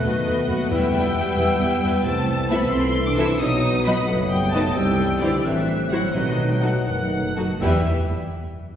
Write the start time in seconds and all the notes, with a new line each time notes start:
Already playing: A3 B3 B4 F#6
0.03 D#2 D#3 A3 F#4 B4 D#5
0.25 D#2 A3 F#4 B4
0.48 D#2 F#3 A3 F#4 B4 F#5
0.70 E2 G3 B3 E4 B4 E5 G5 E6
0.92 E2 G3 E4 B4 E5
1.15 E2 G3 E4 B4 E5
1.37 E2 G3 E4 B4 E5
1.59 E2 G3 E4 B4 E5
1.82 E2 G3 E4 B4 E5
2.04 C2 E3 A3 C4 C5 A5 E6
2.50 E3 B3 E4 A4 E5 B5
2.73 C2 E3 C4 A4 C6
3.07 D4 D6
3.18 E3 E4 A4 E5 E6
3.40 B1 F#3 B3 D#4 B4 D#6
3.85 F#3 B3 D#4 B4 D#5 B5
4.07 F#1 F#3 A3 B3 F#5 D#6
4.31 G3 G5
4.51 F#3 A3 D#4 B4 D#5 A5
4.74 C2 E3 G3 C4 C5 G5 E6
5.20 D3 E3 E4 G4 C5 D5
5.44 A1 E3 F#3 A3 C4 C5 E5 F#6
5.79 G3
5.90 F#3 E4 F#4 C5 F#5
6.14 B1 D#3 F#3 A3 D#4 B4 D#5
6.51 G3 G5
6.62 F#3 D#4 F#4 A4 F#5
6.86 F#1 D#3 F#3 A3 D#4 B4 F#5 F#6
7.36 F#3 D#4 F#4 A4
7.61 E2 E3 G3 E4 G4 B4 E5 E6